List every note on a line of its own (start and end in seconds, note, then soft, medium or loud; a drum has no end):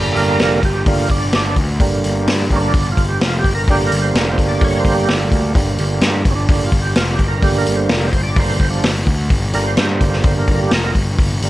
0.00 0.14 G1 medium
0.00 0.60 D3 soft
0.00 0.60 G3 soft
0.00 0.60 A#3 medium
0.12 0.15 A4 medium
0.12 open hi-hat medium
0.17 0.37 G1 medium
0.17 0.62 A#4 medium
0.39 0.61 F1 medium
0.39 snare loud
0.39 open hi-hat medium
0.63 0.84 G1 medium
0.63 0.87 G4 medium
0.63 kick medium
0.63 open hi-hat medium
0.86 1.07 G1 medium
0.86 1.08 D3 soft
0.86 1.08 G3 soft
0.86 1.09 A#3 medium
0.86 1.10 F4 medium
0.86 kick loud
0.86 open hi-hat medium
1.10 1.31 G1 medium
1.10 1.33 D4 medium
1.10 kick medium
1.10 open hi-hat medium
1.33 1.55 G1 medium
1.33 1.57 D4 loud
1.33 snare loud
1.33 open hi-hat medium
1.56 1.77 D2 medium
1.56 kick medium
1.56 open hi-hat medium
1.80 2.01 G1 medium
1.80 2.47 D3 medium
1.80 2.48 G3 soft
1.80 2.48 A#3 medium
1.80 kick loud
1.80 open hi-hat medium
2.04 2.25 G1 medium
2.04 open hi-hat medium
2.27 2.48 G2 medium
2.27 snare loud
2.27 open hi-hat medium
2.50 2.72 G1 medium
2.50 2.73 D3 soft
2.50 2.73 G3 soft
2.50 2.73 A#3 soft
2.50 kick medium
2.50 open hi-hat medium
2.56 2.59 C#4 medium
2.61 2.90 D4 loud
2.74 2.95 G1 medium
2.74 kick loud
2.74 open hi-hat medium
2.92 3.06 F4 medium
2.97 3.18 G1 medium
2.97 kick medium
2.97 open hi-hat medium
3.08 3.22 G4 medium
3.21 3.42 F1 medium
3.21 3.38 F4 medium
3.21 snare loud
3.21 open hi-hat medium
3.39 3.53 G4 loud
3.44 3.65 G1 medium
3.44 kick medium
3.44 open hi-hat medium
3.55 3.69 A#4 medium
3.68 3.89 G1 medium
3.68 5.52 D3 medium
3.68 5.52 G3 soft
3.68 5.53 A#3 medium
3.68 3.85 G4 medium
3.68 kick loud
3.68 open hi-hat medium
3.87 4.00 A#4 medium
3.92 4.12 G1 medium
3.92 open hi-hat medium
4.02 4.16 C5 medium
4.15 4.36 F1 medium
4.15 4.31 A#4 medium
4.15 snare loud
4.15 open hi-hat medium
4.32 4.46 C5 medium
4.38 4.59 G1 medium
4.38 kick medium
4.38 open hi-hat medium
4.49 4.62 D5 medium
4.61 4.82 G1 medium
4.61 4.78 C#5 loud
4.61 kick loud
4.61 open hi-hat medium
4.80 4.94 C5 medium
4.85 5.06 G1 medium
4.85 kick medium
4.85 open hi-hat medium
4.95 5.16 G4 medium
5.08 5.29 G1 medium
5.08 snare loud
5.08 open hi-hat medium
5.32 5.53 D2 medium
5.32 kick medium
5.32 open hi-hat medium
5.55 5.76 G1 medium
5.55 6.22 D3 soft
5.55 6.23 G3 soft
5.55 6.23 A#3 medium
5.55 kick loud
5.55 open hi-hat medium
5.78 6.00 G1 medium
5.78 open hi-hat medium
6.01 6.23 G2 medium
6.01 snare loud
6.01 open hi-hat medium
6.25 6.46 G1 medium
6.25 kick medium
6.25 open hi-hat medium
6.31 6.34 C#4 medium
6.36 6.65 D4 medium
6.49 6.70 G1 medium
6.49 6.71 D3 soft
6.49 6.71 G3 soft
6.49 6.71 A#3 medium
6.49 kick loud
6.49 open hi-hat medium
6.66 6.81 F4 medium
6.72 6.93 G1 medium
6.72 kick medium
6.72 open hi-hat medium
6.82 6.96 G4 medium
6.96 7.17 F1 medium
6.96 7.11 F4 medium
6.96 snare loud
6.96 open hi-hat medium
7.10 7.26 G4 medium
7.19 7.40 G1 medium
7.19 kick medium
7.19 open hi-hat soft
7.28 7.43 A#4 medium
7.42 7.64 G1 medium
7.42 8.09 D3 soft
7.42 8.10 G3 soft
7.42 8.10 A#3 medium
7.42 7.58 G4 medium
7.42 kick loud
7.42 open hi-hat medium
7.58 7.74 A#4 medium
7.66 7.88 G1 medium
7.66 open hi-hat medium
7.76 7.90 C5 medium
7.89 8.11 F1 medium
7.89 8.06 A#4 medium
7.89 snare loud
7.89 open hi-hat medium
8.08 8.22 C5 medium
8.13 8.34 G1 medium
8.13 kick medium
8.13 open hi-hat medium
8.23 8.37 D5 medium
8.36 8.58 G1 medium
8.36 8.59 D3 soft
8.36 8.59 G3 soft
8.36 8.59 A#3 medium
8.36 8.54 C5 medium
8.36 kick loud
8.36 open hi-hat medium
8.55 8.69 C5 medium
8.60 8.81 G1 medium
8.60 kick medium
8.60 open hi-hat medium
8.70 8.91 F3 medium
8.70 8.92 D4 medium
8.84 9.05 G1 medium
8.84 snare loud
8.84 open hi-hat medium
9.07 9.28 D2 medium
9.07 kick medium
9.07 open hi-hat medium
9.30 9.52 G1 medium
9.30 kick loud
9.30 open hi-hat medium
9.53 9.75 G1 medium
9.53 10.49 D3 medium
9.53 10.50 G3 soft
9.53 10.50 A#3 medium
9.53 9.66 A#4 medium
9.53 open hi-hat medium
9.63 9.66 B4 medium
9.67 10.35 C5 medium
9.77 9.99 G2 medium
9.77 snare loud
9.77 open hi-hat medium
10.01 10.22 G1 medium
10.01 kick medium
10.01 open hi-hat medium
10.13 snare soft
10.24 10.45 G1 loud
10.24 kick loud
10.24 open hi-hat medium
10.38 10.60 A#4 medium
10.48 10.69 G1 medium
10.48 10.71 D3 soft
10.48 10.71 G3 soft
10.48 10.71 A#3 medium
10.48 kick medium
10.48 open hi-hat medium
10.62 10.72 G4 medium
10.71 10.93 F1 medium
10.71 10.96 A#4 loud
10.71 snare loud
10.71 open hi-hat medium
10.95 11.16 G1 medium
10.95 kick medium
10.95 open hi-hat medium
11.19 11.40 G1 medium
11.19 kick loud
11.19 open hi-hat medium
11.42 11.50 G1 medium
11.42 11.50 D3 medium
11.42 11.50 G3 soft
11.42 11.50 A#3 medium
11.42 open hi-hat medium